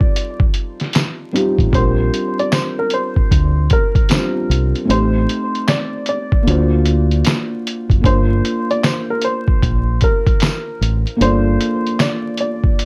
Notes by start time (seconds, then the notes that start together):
Already playing: G3 C4 D#4 F4 A4 D5
0.01 kick
0.16 closed hi-hat
0.40 kick
0.54 closed hi-hat
0.80 snare, closed hi-hat
0.93 snare, clap, closed hi-hat, tambourine
1.32 G3 C4 D#4 F4 G4, closed hi-hat
1.58 A1, kick, closed hi-hat
1.70 A#1 G3 C4 D4, kick
1.74 F4 A#4 C5, closed hi-hat
2.14 closed hi-hat
2.39 D5, closed hi-hat
2.52 C5, snare, clap, closed hi-hat, tambourine
2.79 A#4
2.90 C5, closed hi-hat
3.16 kick
3.31 D2, kick, closed hi-hat
3.70 A#4, kick, closed hi-hat
3.95 kick, closed hi-hat
4.09 G3 C4 D4 F4 C5, snare, clap, closed hi-hat, tambourine
4.50 C2, closed hi-hat
4.75 closed hi-hat
4.85 A3 C4 D#4
4.89 A1 G4 C5, closed hi-hat
5.29 closed hi-hat
5.55 closed hi-hat
5.68 D5, snare, clap, closed hi-hat, tambourine
6.06 D5, closed hi-hat
6.32 kick
6.43 A#3 D4 F4
6.47 D2 F#4 C5, closed hi-hat
6.85 closed hi-hat
7.11 closed hi-hat
7.25 snare, clap, closed hi-hat, tambourine
7.67 closed hi-hat
7.90 F#1, kick, closed hi-hat
8.01 G1 A#3 D4 F4, kick
8.05 A#4 C5, closed hi-hat
8.45 closed hi-hat
8.71 D5, closed hi-hat
8.84 C5, snare, clap, closed hi-hat, tambourine
9.10 A#4
9.22 C5, closed hi-hat
9.48 kick
9.63 A#1, kick, closed hi-hat
10.01 A#4, kick, closed hi-hat
10.27 kick, closed hi-hat
10.40 snare, clap, closed hi-hat, tambourine
10.81 A1, closed hi-hat
11.07 closed hi-hat
11.17 A#3 D4 F4
11.21 G1 A4 C5 D5, closed hi-hat
11.61 closed hi-hat
11.87 closed hi-hat
12.00 D5, snare, clap, closed hi-hat, tambourine
12.37 D5, closed hi-hat
12.64 kick
12.79 closed hi-hat